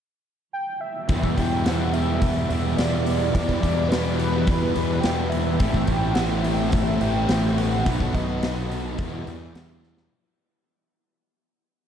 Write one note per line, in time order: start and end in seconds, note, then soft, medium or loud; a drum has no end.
0.53 0.82 G5 loud
0.81 1.08 E5 loud
1.09 1.65 E2 loud
1.09 1.35 E2 medium
1.09 1.66 B2 medium
1.09 1.64 E3 medium
1.09 5.57 E3 medium
1.09 1.68 E3 medium
1.09 1.38 G3 medium
1.09 1.37 B3 loud
1.09 7.83 E4 medium
1.09 1.36 E4 loud
1.09 7.83 G4 medium
1.09 5.57 D5 medium
1.09 1.37 E5 loud
1.09 kick loud
1.09 open hi-hat medium
1.23 kick medium
1.36 2.47 E2 medium
1.36 1.64 G3 medium
1.36 1.66 B3 medium
1.36 1.66 E4 medium
1.36 1.66 G5 loud
1.36 kick medium
1.36 open hi-hat medium
1.64 2.21 E2 medium
1.64 2.22 B2 medium
1.64 2.21 E3 medium
1.64 2.24 E3 medium
1.64 1.95 G3 medium
1.64 1.94 B3 medium
1.64 1.93 E4 medium
1.64 1.93 F#5 loud
1.64 snare loud
1.64 open hi-hat medium
1.93 2.21 G3 medium
1.93 2.22 B3 medium
1.93 2.23 E4 medium
1.93 2.46 E5 loud
1.93 open hi-hat medium
2.22 2.76 E2 medium
2.22 2.51 B2 loud
2.22 2.77 E3 medium
2.22 2.49 E3 loud
2.22 2.51 G3 loud
2.22 2.49 B3 loud
2.22 2.49 E4 loud
2.22 kick loud
2.22 open hi-hat medium
2.49 2.76 E2 medium
2.49 2.78 B2 medium
2.49 2.80 E3 medium
2.49 2.78 G3 medium
2.49 2.78 B3 medium
2.49 2.80 E4 medium
2.49 2.78 E5 loud
2.49 open hi-hat medium
2.77 3.33 E2 medium
2.77 3.31 E2 medium
2.77 3.35 B2 medium
2.77 3.33 E3 medium
2.77 3.37 E3 medium
2.77 3.08 G3 medium
2.77 3.06 B3 medium
2.77 3.05 E4 medium
2.77 3.31 D5 loud
2.77 snare loud
2.77 open hi-hat medium
3.06 3.34 G3 medium
3.06 3.34 B3 medium
3.06 3.35 E4 medium
3.06 open hi-hat medium
3.32 3.90 E2 medium
3.32 3.61 E2 loud
3.32 3.91 B2 medium
3.32 3.90 E3 loud
3.32 3.64 G3 medium
3.32 3.62 B3 medium
3.32 3.62 E4 loud
3.32 3.90 D5 loud
3.32 kick loud
3.32 open hi-hat medium
3.37 3.93 E3 loud
3.49 kick medium
3.49 snare soft
3.62 4.72 E2 medium
3.62 3.91 G3 medium
3.62 3.91 B3 medium
3.62 3.92 E4 medium
3.62 kick medium
3.62 open hi-hat medium
3.88 4.46 E2 medium
3.88 4.47 E3 medium
3.88 4.21 G3 medium
3.88 4.19 B3 medium
3.88 4.15 B4 medium
3.88 open hi-hat medium
3.92 4.47 B2 medium
3.92 4.49 E3 medium
3.92 4.19 E4 medium
3.92 snare loud
4.15 4.48 E4 medium
4.15 5.02 B4 loud
4.20 4.47 G3 medium
4.20 4.47 B3 medium
4.20 open hi-hat medium
4.47 5.03 E2 medium
4.47 4.77 B2 loud
4.47 5.03 E3 loud
4.47 4.74 E3 loud
4.47 4.77 G3 loud
4.47 4.76 B3 loud
4.47 4.75 E4 loud
4.47 kick loud
4.47 open hi-hat medium
4.76 5.02 E2 medium
4.76 5.04 B2 medium
4.76 5.05 E3 medium
4.76 5.04 G3 medium
4.76 5.04 B3 medium
4.76 5.05 E4 medium
4.76 open hi-hat medium
5.00 5.59 E2 medium
5.00 5.31 G5 loud
5.00 snare loud
5.00 open hi-hat medium
5.04 5.57 E2 medium
5.04 5.60 B2 medium
5.04 5.59 E3 medium
5.04 5.60 E3 medium
5.04 5.34 G3 medium
5.04 5.33 B3 medium
5.04 5.31 E4 medium
5.29 5.59 E4 medium
5.29 5.57 E5 loud
5.29 open hi-hat medium
5.34 5.60 G3 medium
5.34 5.60 B3 medium
5.58 5.87 A1 medium
5.58 6.17 A2 loud
5.58 6.15 A2 medium
5.58 6.15 E3 loud
5.58 7.84 A3 medium
5.58 5.89 A3 loud
5.58 5.88 C4 loud
5.58 7.84 C5 medium
5.58 5.87 E5 loud
5.58 kick loud
5.58 open hi-hat medium
5.62 6.16 E3 medium
5.62 6.18 A3 loud
5.62 5.87 E4 loud
5.74 kick medium
5.74 snare soft
5.86 6.98 A1 loud
5.86 6.16 C4 medium
5.86 6.17 E4 medium
5.86 6.16 G5 loud
5.86 kick medium
5.86 open hi-hat medium
5.90 6.16 A3 medium
6.14 6.71 A2 medium
6.14 6.72 E3 medium
6.14 6.73 E3 medium
6.14 6.45 A3 medium
6.14 6.45 C4 medium
6.14 6.44 F#5 medium
6.14 snare loud
6.14 open hi-hat medium
6.18 6.74 A3 medium
6.18 6.43 E4 medium
6.43 6.73 A3 medium
6.43 6.73 C4 medium
6.43 6.73 E4 medium
6.43 6.70 E5 medium
6.43 open hi-hat medium
6.71 7.29 A2 medium
6.71 7.27 A2 medium
6.71 7.27 E3 loud
6.71 7.03 E3 loud
6.71 7.02 A3 loud
6.71 7.01 C4 loud
6.71 7.00 E4 loud
6.71 7.03 E5 loud
6.71 kick loud
6.71 open hi-hat medium
6.75 7.00 A3 loud
7.01 7.27 A1 loud
7.01 7.29 E3 medium
7.01 7.31 A3 medium
7.01 7.28 A3 medium
7.01 7.28 C4 medium
7.01 7.29 E4 medium
7.01 7.59 G5 loud
7.01 open hi-hat medium
7.29 7.83 A1 loud
7.29 7.84 A2 medium
7.29 7.84 E3 medium
7.29 7.85 E3 medium
7.29 7.57 A3 medium
7.29 7.86 A3 medium
7.29 7.56 C4 medium
7.29 7.55 E4 medium
7.29 snare loud
7.29 open hi-hat medium
7.56 7.85 A3 medium
7.56 7.84 C4 medium
7.56 7.84 E4 medium
7.56 8.17 F#5 loud
7.56 open hi-hat medium
7.85 8.13 B1 medium
7.85 8.42 B2 medium
7.85 8.41 B2 loud
7.85 8.42 D#3 loud
7.85 8.14 F#3 loud
7.85 8.43 F#3 loud
7.85 8.13 B3 loud
7.85 8.99 B3 medium
7.85 8.44 B3 medium
7.85 8.13 D#4 loud
7.85 8.99 F#4 medium
7.85 8.12 A4 loud
7.85 8.99 A4 medium
7.85 8.99 D#5 medium
7.85 kick loud
7.85 open hi-hat medium
8.00 kick medium
8.13 8.95 B1 medium
8.13 8.39 F#3 medium
8.13 8.40 B3 medium
8.13 8.41 D#4 medium
8.13 8.41 A4 medium
8.13 8.71 D#5 medium
8.13 kick medium
8.13 open hi-hat medium
8.40 8.97 B2 medium
8.40 8.70 F#3 medium
8.40 8.98 F#3 medium
8.40 8.69 B3 medium
8.40 8.69 D#4 medium
8.40 8.68 A4 medium
8.40 snare loud
8.40 open hi-hat medium
8.45 8.99 B3 medium
8.69 8.98 F#3 medium
8.69 8.97 B3 medium
8.69 8.97 D#4 medium
8.69 8.97 A4 medium
8.69 open hi-hat medium
8.98 9.25 E2 loud
8.98 9.54 E2 medium
8.98 9.29 B2 loud
8.98 9.53 E3 loud
8.98 10.11 E3 medium
8.98 9.26 E3 loud
8.98 9.27 G3 loud
8.98 9.27 B3 loud
8.98 10.11 E4 medium
8.98 9.25 E4 loud
8.98 10.11 G4 medium
8.98 10.11 D5 medium
8.98 kick loud
8.98 open hi-hat medium
9.26 9.53 E2 loud
9.26 9.55 B2 medium
9.26 9.56 E3 medium
9.26 9.54 G3 medium
9.26 9.54 B3 medium
9.26 9.55 E4 medium
9.26 open hi-hat medium
9.55 10.08 E2 medium
9.55 10.10 E2 medium
9.55 10.11 B2 medium
9.55 10.10 E3 medium
9.55 10.11 E3 medium
9.55 9.84 G3 medium
9.55 9.83 B3 medium
9.55 9.81 E4 medium
9.55 snare loud
9.55 open hi-hat medium
9.83 10.11 G3 medium
9.83 10.10 B3 medium
9.83 10.10 E4 medium
9.83 snare medium
9.97 snare medium